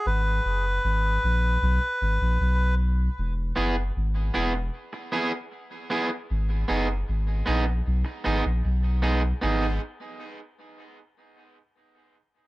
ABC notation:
X:1
M:4/4
L:1/16
Q:1/4=77
K:G#m
V:1 name="Melodica"
B12- B2 z2 | z16 | z16 | z16 |]
V:2 name="Clean electric guitar"
z16 | z2 [B,EG] z3 [B,EG] z3 [B,EG] z3 [B,EG] z | z2 [B,DG] z3 [B,DG] z3 [B,DG] z3 [B,DG] z | [B,DG]2 z12 z2 |]
V:3 name="Sub bass" clef=bass
G,,,2 F,,,2 G,,,2 A,,,2 B,,, z G,,, A,,, B,,,4 | E,,,2 F,,,2 G,,,2 E,,,2 z8 | G,,,2 F,,,2 G,,,2 A,,,2 B,,, z G,,, A,,, B,,,4 | G,,,2 z12 z2 |]